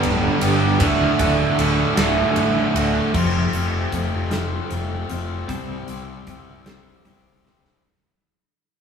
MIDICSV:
0, 0, Header, 1, 5, 480
1, 0, Start_track
1, 0, Tempo, 778210
1, 495, Time_signature, 6, 3, 24, 8
1, 2897, Tempo, 787402
1, 5400, End_track
2, 0, Start_track
2, 0, Title_t, "Distorted electric guitar"
2, 0, Program_c, 0, 30
2, 0, Note_on_c, 0, 43, 74
2, 0, Note_on_c, 0, 50, 82
2, 0, Note_on_c, 0, 55, 80
2, 0, Note_on_c, 0, 59, 91
2, 0, Note_on_c, 0, 62, 102
2, 0, Note_on_c, 0, 67, 100
2, 245, Note_off_c, 0, 67, 0
2, 252, Note_on_c, 0, 67, 83
2, 254, Note_off_c, 0, 62, 0
2, 257, Note_off_c, 0, 59, 0
2, 262, Note_on_c, 0, 62, 67
2, 264, Note_off_c, 0, 55, 0
2, 265, Note_on_c, 0, 59, 65
2, 271, Note_on_c, 0, 55, 57
2, 478, Note_off_c, 0, 67, 0
2, 483, Note_off_c, 0, 62, 0
2, 485, Note_off_c, 0, 50, 0
2, 485, Note_off_c, 0, 59, 0
2, 486, Note_off_c, 0, 43, 0
2, 488, Note_off_c, 0, 55, 0
2, 489, Note_on_c, 0, 38, 97
2, 497, Note_on_c, 0, 45, 88
2, 498, Note_on_c, 0, 50, 100
2, 503, Note_on_c, 0, 57, 95
2, 506, Note_on_c, 0, 66, 114
2, 722, Note_off_c, 0, 66, 0
2, 730, Note_on_c, 0, 66, 83
2, 734, Note_off_c, 0, 57, 0
2, 739, Note_off_c, 0, 50, 0
2, 741, Note_on_c, 0, 57, 71
2, 746, Note_on_c, 0, 50, 56
2, 961, Note_off_c, 0, 45, 0
2, 968, Note_off_c, 0, 50, 0
2, 969, Note_on_c, 0, 45, 73
2, 970, Note_off_c, 0, 38, 0
2, 975, Note_off_c, 0, 57, 0
2, 975, Note_on_c, 0, 50, 85
2, 982, Note_off_c, 0, 66, 0
2, 983, Note_on_c, 0, 57, 84
2, 990, Note_on_c, 0, 66, 83
2, 1202, Note_off_c, 0, 66, 0
2, 1207, Note_off_c, 0, 57, 0
2, 1209, Note_on_c, 0, 66, 100
2, 1212, Note_off_c, 0, 50, 0
2, 1215, Note_on_c, 0, 57, 94
2, 1216, Note_off_c, 0, 45, 0
2, 1220, Note_on_c, 0, 50, 93
2, 1223, Note_on_c, 0, 45, 86
2, 1226, Note_on_c, 0, 38, 82
2, 1686, Note_off_c, 0, 66, 0
2, 1693, Note_on_c, 0, 66, 72
2, 1696, Note_off_c, 0, 57, 0
2, 1703, Note_off_c, 0, 50, 0
2, 1703, Note_on_c, 0, 57, 69
2, 1711, Note_on_c, 0, 50, 61
2, 1919, Note_off_c, 0, 66, 0
2, 1924, Note_off_c, 0, 45, 0
2, 1924, Note_off_c, 0, 57, 0
2, 1925, Note_off_c, 0, 38, 0
2, 1927, Note_off_c, 0, 50, 0
2, 1930, Note_on_c, 0, 41, 84
2, 1937, Note_on_c, 0, 48, 85
2, 1938, Note_on_c, 0, 53, 96
2, 1943, Note_on_c, 0, 57, 82
2, 1948, Note_on_c, 0, 60, 92
2, 1950, Note_on_c, 0, 65, 93
2, 2165, Note_off_c, 0, 65, 0
2, 2173, Note_on_c, 0, 65, 66
2, 2177, Note_off_c, 0, 57, 0
2, 2179, Note_off_c, 0, 60, 0
2, 2181, Note_on_c, 0, 60, 62
2, 2184, Note_off_c, 0, 53, 0
2, 2184, Note_on_c, 0, 57, 55
2, 2191, Note_on_c, 0, 53, 55
2, 2413, Note_off_c, 0, 41, 0
2, 2416, Note_off_c, 0, 48, 0
2, 2650, Note_off_c, 0, 65, 0
2, 2657, Note_on_c, 0, 65, 88
2, 2659, Note_off_c, 0, 57, 0
2, 2661, Note_off_c, 0, 60, 0
2, 2663, Note_off_c, 0, 53, 0
2, 2664, Note_on_c, 0, 60, 78
2, 2667, Note_on_c, 0, 57, 72
2, 2670, Note_on_c, 0, 53, 76
2, 2674, Note_on_c, 0, 48, 65
2, 2676, Note_on_c, 0, 41, 70
2, 2898, Note_off_c, 0, 53, 0
2, 2902, Note_off_c, 0, 57, 0
2, 2905, Note_on_c, 0, 53, 72
2, 2909, Note_on_c, 0, 57, 83
2, 2913, Note_off_c, 0, 60, 0
2, 2915, Note_off_c, 0, 65, 0
2, 2916, Note_on_c, 0, 60, 81
2, 2922, Note_on_c, 0, 65, 85
2, 3130, Note_off_c, 0, 65, 0
2, 3137, Note_on_c, 0, 65, 61
2, 3142, Note_off_c, 0, 57, 0
2, 3142, Note_off_c, 0, 60, 0
2, 3144, Note_on_c, 0, 60, 65
2, 3145, Note_off_c, 0, 48, 0
2, 3146, Note_off_c, 0, 41, 0
2, 3149, Note_off_c, 0, 53, 0
2, 3150, Note_on_c, 0, 57, 62
2, 3156, Note_on_c, 0, 53, 51
2, 3361, Note_off_c, 0, 65, 0
2, 3368, Note_off_c, 0, 57, 0
2, 3371, Note_off_c, 0, 53, 0
2, 3373, Note_on_c, 0, 48, 74
2, 3379, Note_on_c, 0, 55, 90
2, 3384, Note_off_c, 0, 60, 0
2, 3384, Note_on_c, 0, 60, 92
2, 3387, Note_on_c, 0, 64, 88
2, 3390, Note_on_c, 0, 67, 95
2, 3392, Note_on_c, 0, 72, 92
2, 3610, Note_off_c, 0, 72, 0
2, 3615, Note_off_c, 0, 67, 0
2, 3617, Note_on_c, 0, 72, 64
2, 3620, Note_off_c, 0, 64, 0
2, 3622, Note_on_c, 0, 67, 59
2, 3627, Note_on_c, 0, 64, 53
2, 3630, Note_off_c, 0, 60, 0
2, 3637, Note_on_c, 0, 60, 52
2, 3853, Note_off_c, 0, 48, 0
2, 3856, Note_off_c, 0, 55, 0
2, 4085, Note_off_c, 0, 72, 0
2, 4088, Note_off_c, 0, 67, 0
2, 4092, Note_off_c, 0, 64, 0
2, 4092, Note_on_c, 0, 72, 76
2, 4096, Note_on_c, 0, 67, 77
2, 4098, Note_off_c, 0, 60, 0
2, 4099, Note_on_c, 0, 64, 76
2, 4105, Note_on_c, 0, 60, 72
2, 4107, Note_on_c, 0, 55, 66
2, 4109, Note_on_c, 0, 48, 62
2, 4328, Note_off_c, 0, 60, 0
2, 4333, Note_off_c, 0, 64, 0
2, 4335, Note_on_c, 0, 60, 67
2, 4339, Note_off_c, 0, 67, 0
2, 4340, Note_on_c, 0, 64, 78
2, 4345, Note_off_c, 0, 72, 0
2, 4347, Note_on_c, 0, 67, 69
2, 4353, Note_on_c, 0, 72, 87
2, 4566, Note_off_c, 0, 72, 0
2, 4573, Note_off_c, 0, 67, 0
2, 4573, Note_on_c, 0, 72, 58
2, 4580, Note_off_c, 0, 64, 0
2, 4580, Note_on_c, 0, 67, 58
2, 4581, Note_off_c, 0, 55, 0
2, 4582, Note_off_c, 0, 48, 0
2, 4585, Note_off_c, 0, 60, 0
2, 4587, Note_on_c, 0, 64, 58
2, 4593, Note_on_c, 0, 60, 57
2, 4800, Note_off_c, 0, 72, 0
2, 4803, Note_off_c, 0, 67, 0
2, 4807, Note_off_c, 0, 64, 0
2, 4810, Note_off_c, 0, 60, 0
2, 5400, End_track
3, 0, Start_track
3, 0, Title_t, "Clean electric guitar"
3, 0, Program_c, 1, 27
3, 1934, Note_on_c, 1, 41, 92
3, 1937, Note_on_c, 1, 48, 98
3, 1939, Note_on_c, 1, 53, 102
3, 2160, Note_off_c, 1, 41, 0
3, 2161, Note_off_c, 1, 48, 0
3, 2162, Note_off_c, 1, 53, 0
3, 2176, Note_on_c, 1, 41, 69
3, 2180, Note_on_c, 1, 48, 81
3, 2392, Note_off_c, 1, 41, 0
3, 2394, Note_off_c, 1, 48, 0
3, 2421, Note_on_c, 1, 41, 70
3, 2423, Note_on_c, 1, 48, 77
3, 2635, Note_off_c, 1, 41, 0
3, 2636, Note_off_c, 1, 48, 0
3, 2656, Note_on_c, 1, 41, 70
3, 2660, Note_on_c, 1, 48, 71
3, 2873, Note_off_c, 1, 41, 0
3, 2875, Note_off_c, 1, 48, 0
3, 2896, Note_on_c, 1, 41, 66
3, 2900, Note_on_c, 1, 48, 68
3, 3112, Note_off_c, 1, 41, 0
3, 3114, Note_off_c, 1, 48, 0
3, 3139, Note_on_c, 1, 41, 63
3, 3142, Note_on_c, 1, 48, 68
3, 3353, Note_off_c, 1, 41, 0
3, 3354, Note_off_c, 1, 48, 0
3, 3375, Note_on_c, 1, 48, 86
3, 3378, Note_on_c, 1, 55, 92
3, 3378, Note_on_c, 1, 60, 107
3, 3600, Note_off_c, 1, 48, 0
3, 3601, Note_off_c, 1, 55, 0
3, 3602, Note_off_c, 1, 60, 0
3, 3618, Note_on_c, 1, 48, 71
3, 3620, Note_on_c, 1, 55, 69
3, 3832, Note_off_c, 1, 48, 0
3, 3833, Note_off_c, 1, 55, 0
3, 3855, Note_on_c, 1, 48, 68
3, 3859, Note_on_c, 1, 55, 75
3, 4071, Note_off_c, 1, 48, 0
3, 4072, Note_off_c, 1, 55, 0
3, 4095, Note_on_c, 1, 48, 60
3, 4097, Note_on_c, 1, 55, 65
3, 4310, Note_off_c, 1, 48, 0
3, 4312, Note_off_c, 1, 55, 0
3, 4332, Note_on_c, 1, 48, 65
3, 4334, Note_on_c, 1, 55, 76
3, 4549, Note_off_c, 1, 48, 0
3, 4550, Note_off_c, 1, 55, 0
3, 4573, Note_on_c, 1, 48, 51
3, 4576, Note_on_c, 1, 55, 61
3, 4790, Note_off_c, 1, 48, 0
3, 4791, Note_off_c, 1, 55, 0
3, 5400, End_track
4, 0, Start_track
4, 0, Title_t, "Fingered electric bass"
4, 0, Program_c, 2, 33
4, 22, Note_on_c, 2, 26, 91
4, 167, Note_off_c, 2, 26, 0
4, 256, Note_on_c, 2, 31, 96
4, 496, Note_off_c, 2, 31, 0
4, 496, Note_on_c, 2, 26, 97
4, 642, Note_off_c, 2, 26, 0
4, 738, Note_on_c, 2, 26, 101
4, 883, Note_off_c, 2, 26, 0
4, 976, Note_on_c, 2, 26, 86
4, 1122, Note_off_c, 2, 26, 0
4, 1215, Note_on_c, 2, 26, 96
4, 1361, Note_off_c, 2, 26, 0
4, 1459, Note_on_c, 2, 33, 94
4, 1604, Note_off_c, 2, 33, 0
4, 1692, Note_on_c, 2, 26, 92
4, 1839, Note_off_c, 2, 26, 0
4, 1939, Note_on_c, 2, 29, 88
4, 2137, Note_off_c, 2, 29, 0
4, 2170, Note_on_c, 2, 29, 90
4, 2372, Note_off_c, 2, 29, 0
4, 2422, Note_on_c, 2, 29, 82
4, 2820, Note_off_c, 2, 29, 0
4, 2902, Note_on_c, 2, 29, 78
4, 3099, Note_off_c, 2, 29, 0
4, 3140, Note_on_c, 2, 29, 82
4, 3337, Note_off_c, 2, 29, 0
4, 3381, Note_on_c, 2, 36, 81
4, 3578, Note_off_c, 2, 36, 0
4, 3623, Note_on_c, 2, 36, 82
4, 3819, Note_off_c, 2, 36, 0
4, 3854, Note_on_c, 2, 36, 79
4, 4254, Note_off_c, 2, 36, 0
4, 4335, Note_on_c, 2, 36, 76
4, 4534, Note_off_c, 2, 36, 0
4, 4577, Note_on_c, 2, 36, 74
4, 4776, Note_off_c, 2, 36, 0
4, 5400, End_track
5, 0, Start_track
5, 0, Title_t, "Drums"
5, 20, Note_on_c, 9, 51, 89
5, 82, Note_off_c, 9, 51, 0
5, 255, Note_on_c, 9, 51, 85
5, 317, Note_off_c, 9, 51, 0
5, 493, Note_on_c, 9, 51, 112
5, 497, Note_on_c, 9, 36, 116
5, 555, Note_off_c, 9, 51, 0
5, 559, Note_off_c, 9, 36, 0
5, 736, Note_on_c, 9, 36, 84
5, 736, Note_on_c, 9, 51, 80
5, 798, Note_off_c, 9, 36, 0
5, 798, Note_off_c, 9, 51, 0
5, 979, Note_on_c, 9, 51, 84
5, 1041, Note_off_c, 9, 51, 0
5, 1217, Note_on_c, 9, 51, 113
5, 1218, Note_on_c, 9, 38, 127
5, 1279, Note_off_c, 9, 38, 0
5, 1279, Note_off_c, 9, 51, 0
5, 1455, Note_on_c, 9, 51, 82
5, 1517, Note_off_c, 9, 51, 0
5, 1701, Note_on_c, 9, 51, 75
5, 1762, Note_off_c, 9, 51, 0
5, 1940, Note_on_c, 9, 36, 108
5, 1940, Note_on_c, 9, 49, 92
5, 2001, Note_off_c, 9, 36, 0
5, 2002, Note_off_c, 9, 49, 0
5, 2179, Note_on_c, 9, 42, 54
5, 2241, Note_off_c, 9, 42, 0
5, 2420, Note_on_c, 9, 42, 64
5, 2421, Note_on_c, 9, 36, 75
5, 2482, Note_off_c, 9, 36, 0
5, 2482, Note_off_c, 9, 42, 0
5, 2660, Note_on_c, 9, 42, 85
5, 2661, Note_on_c, 9, 38, 110
5, 2722, Note_off_c, 9, 38, 0
5, 2722, Note_off_c, 9, 42, 0
5, 2902, Note_on_c, 9, 42, 64
5, 2963, Note_off_c, 9, 42, 0
5, 3140, Note_on_c, 9, 42, 62
5, 3201, Note_off_c, 9, 42, 0
5, 3380, Note_on_c, 9, 36, 111
5, 3381, Note_on_c, 9, 42, 84
5, 3441, Note_off_c, 9, 36, 0
5, 3442, Note_off_c, 9, 42, 0
5, 3617, Note_on_c, 9, 42, 60
5, 3678, Note_off_c, 9, 42, 0
5, 3855, Note_on_c, 9, 42, 59
5, 3858, Note_on_c, 9, 36, 73
5, 3916, Note_off_c, 9, 42, 0
5, 3919, Note_off_c, 9, 36, 0
5, 4094, Note_on_c, 9, 38, 102
5, 4094, Note_on_c, 9, 42, 81
5, 4155, Note_off_c, 9, 38, 0
5, 4155, Note_off_c, 9, 42, 0
5, 4334, Note_on_c, 9, 42, 53
5, 4395, Note_off_c, 9, 42, 0
5, 4577, Note_on_c, 9, 38, 50
5, 4638, Note_off_c, 9, 38, 0
5, 4694, Note_on_c, 9, 38, 72
5, 4755, Note_off_c, 9, 38, 0
5, 5400, End_track
0, 0, End_of_file